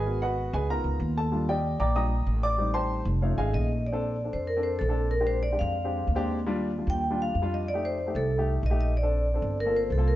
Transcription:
<<
  \new Staff \with { instrumentName = "Vibraphone" } { \time 4/4 \key f \mixolydian \tempo 4 = 188 r1 | r1 | r2. ees''4 | \key bes \major d''4. c''8 bes'8 c''8 a'4 |
bes'8 c''8 d''8 f''2 r8 | r4. g''4 f''4 ees''8 | d''8 c''4 a'4 r8 ees''8 ees''8 | d''2 bes'8 c''8 a'8 bes'8 | }
  \new Staff \with { instrumentName = "Upright piano" } { \time 4/4 \key f \mixolydian << { <aes' b' ees'' aes''>8 <ges' ces'' ees'' ges''>4 <aes' ces'' ees'' aes''>8 <bes' bes''>4. <a' a''>8~ | <a' a''>8 <g' d'' ees'' g''>4 <d'' g'' bes'' d'''>8 <ees'' g'' bes'' ees'''>4. <d'' d'''>8~ | <d'' d'''>8 <c'' g'' a'' c'''>4 r8 <f' a' cis'' f''>8 <gis' ees'' f'' gis''>4 r8 | \key bes \major r16 <c' d' a'>8. r16 <c' d' a'>8. r16 <c' d' a'>8. r16 <c' d' a'>8. |
r16 <aes c' d' g'>8. r16 <aes c' d' g'>8. r16 <aes c' d' g'>8. r16 <aes c' d' g'>8. | r16 <g d' f'>8. r16 <g d' f'>8. r16 <g d' f'>8. r16 <g d' f'>8. | r16 <a ees' g'>8. r16 <a ees' g'>8. r16 <a ees' g'>8. r16 <a ees' g'>8. | r16 <c' d' a'>8. r16 <c' d' a'>8. r16 <bes c' f' a'>8. r16 <bes c' f' a'>8. | } \\ { <ces' ges' bes'>4. r8 <b dis' eis'>2 | <g d' f'>8 r4. <g d' f'>8 r4. | <g c' ees'>2 <a cis' ees'>2 | r1 |
r1 | r1 | r1 | r1 | } >> }
  \new Staff \with { instrumentName = "Upright bass" } { \clef bass \time 4/4 \key f \mixolydian aes,,4. cis,4 cis,8 dis,4~ | dis,4. bes,,4. a,,4~ | a,,4. f,,4 gis,,8 bes,,4~ | \key bes \major bes,,4. f,4. bes,,4~ |
bes,,4. f,4. ees,4~ | ees,4. ees,4. f,4~ | f,4. c,4. bes,,4~ | bes,,4. g,,4. c,4 | }
>>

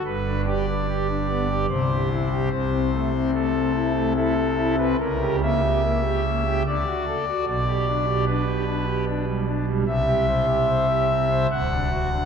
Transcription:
<<
  \new Staff \with { instrumentName = "Pipe organ" } { \time 3/4 \key g \major \tempo 4 = 74 << { b'8 d''4. c''4 | c''4 a'4 a'8. b'16 | ais'8 e''4. d''4 | d''4 b'4 r4 |
e''2 fis''4 | } \\ { g,16 d'16 g'16 d'16 g'16 d'16 b16 g'16 c16 g'16 e'16 g'16 | c16 c'16 a16 c'16 a16 c'16 e'16 a16 e'16 c'16 e'16 c'16 | cis16 g'16 ais16 g'16 ais16 g'16 ais16 g'16 d16 fis'16 a'16 fis'16 | b,16 g'16 d'16 g'16 d'16 g'16 d'16 g'16 d'16 g16 d'16 g16 |
c16 g'16 c''16 g'16 c''16 g'16 c'16 c''16 d,16 d'16 fis'16 d'16 | } >> }
  \new Staff \with { instrumentName = "Pipe organ" } { \clef bass \time 3/4 \key g \major g,,2 c,4 | c,2. | cis,2 d,16 r8. | b,,2. |
c,2 d,,4 | }
>>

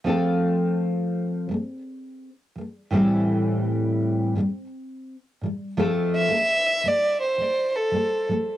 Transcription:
<<
  \new Staff \with { instrumentName = "Violin" } { \time 4/4 \key f \major \tempo 4 = 84 r1 | r1 | r8 e''4 d''8 c''8. a'8. r8 | }
  \new Staff \with { instrumentName = "Nylon-string guitar" } { \clef bass \time 4/4 \key f \major <f a c' f' a'>2 <f a>8 r4 <f a>8 | <a, e g c' e' a'>2 <a, e g>8 r4 <a, e g>8 | <f a c' f' a'>8. <f a>8 r16 <f a>8 r16 <f a>8 r16 <f a>8 <f a>8 | }
>>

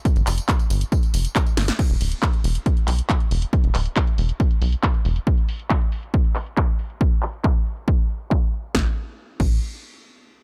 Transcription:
<<
  \new Staff \with { instrumentName = "Analog synth bass" } { \clef bass \time 4/4 \key e \phrygian \tempo 4 = 138 r16 g,,16 f,,16 r8. g,,16 r8. f,,16 r8. g,,16 r16 | r16 e,,16 d,,16 r8. e,,16 r8. b,,16 r8. e,,16 r16 | r16 e,,16 d,,16 r8. e,,16 r8. b,,16 r8. e,,16 r16 | r1 |
r1 | a,,16 r4 r16 a,,8 r2 | }
  \new DrumStaff \with { instrumentName = "Drums" } \drummode { \time 4/4 <hh bd tamb>16 <hh tamb>16 <hc hho tamb>16 <hh tamb>16 <hc hh bd tamb>16 <hh tamb>16 <hho tamb>16 <hh tamb>16 <hh bd tamb>16 <hh tamb>16 <hho tamb>16 <hh tamb>16 <hc hh bd tamb>16 <hh tamb>16 <hho sn tamb>16 <hh sn tamb>16 | <cymc hh bd>16 hh16 hho16 hh16 <hc hh bd>16 hh16 hho16 hh16 <hh bd>16 hh16 <hc hho>16 hh16 <hc hh bd>16 hh16 hho16 hh16 | <hh bd>16 hh16 <hc hho>16 hh16 <hc hh bd>16 hh16 hho16 hh16 <hh bd>16 hh16 hho16 hh16 <hc hh bd>16 hh16 hho16 hh16 | <hh bd>16 hh16 hho16 hh16 <hc hh bd>16 hh16 hho16 hh16 bd16 hh16 <hc hho>16 hh16 <hc bd>16 hh16 hho16 hh16 |
bd8 <hc hho>16 hh16 <hc bd>8 hho16 hh16 bd8 hho16 hh16 <hc bd>8 hho16 hh16 | <bd sn>4 r8 <cymc bd>8 r4 r4 | }
>>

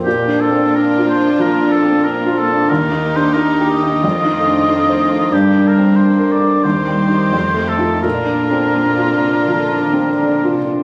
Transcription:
<<
  \new Staff \with { instrumentName = "Oboe" } { \time 4/4 \key bes \major \tempo 4 = 88 g'8 a'8 bes'8 c''8 bes'8 a'8 bes'8 a'8 | bes'8. c''16 bes'8 ees''2~ ees''8 | g'8 bes'8 c''8 d''8 c''4. a'8 | bes'2.~ bes'8 r8 | }
  \new Staff \with { instrumentName = "Violin section" } { \time 4/4 \key bes \major <d' f'>1 | <ees' g'>2 <c' f'>2 | <bes d'>2 <c' g'>2 | <d' f'>2.~ <d' f'>8 r8 | }
  \new Staff \with { instrumentName = "Grand piano" } { \time 4/4 \key bes \major \tuplet 3/2 { bes,8 d'8 c'8 d'8 f'8 d'8 f8 d'8 c'8 d'8 f'8 d'8 } | \tuplet 3/2 { ees,8 ees'8 d'8 ees'8 g'8 ees'8 f,8 ees'8 d'8 ees'8 c''8 ees'8 } | \tuplet 3/2 { g,8 d'8 c'8 d'8 bes'8 d'8 ees,8 g8 <ees' g'>8 f,8 a8 <ees' f'>8 } | \tuplet 3/2 { bes,8 d'8 c'8 d'8 f'8 d'8 f8 d'8 c'8 d'8 f'8 d'8 } | }
  \new Staff \with { instrumentName = "Viola section" } { \clef bass \time 4/4 \key bes \major << { bes1~ | bes2 a2 | g2. a4 | bes2.~ bes8 r8 | } \\ { f1 | ees1 | d2 ees2 | d2.~ d8 r8 | } >> }
  \new Staff \with { instrumentName = "Cello section" } { \clef bass \time 4/4 \key bes \major bes,1 | ees,2 f,2 | g,2 ees,4 f,4 | bes,4 bes,8 c8 d8 ees8 d8 c8 | }
>>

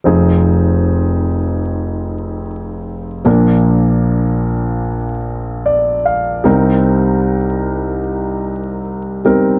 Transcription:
<<
  \new Staff \with { instrumentName = "Grand piano" } { \time 4/4 \key f \dorian \tempo 4 = 75 << { r1 | r2. d''8 f''8 | r1 | } \\ { <f c' ees' aes'>1 | <f bes d' bes'>1 | <g c' ees' bes'>2.~ <g c' ees' bes'>8 <g c' ees' bes'>8 | } >> }
  \new Staff \with { instrumentName = "Grand piano" } { \clef bass \time 4/4 \key f \dorian <f,, f,>1 | <bes,, bes,>1 | <c, c>1 | }
>>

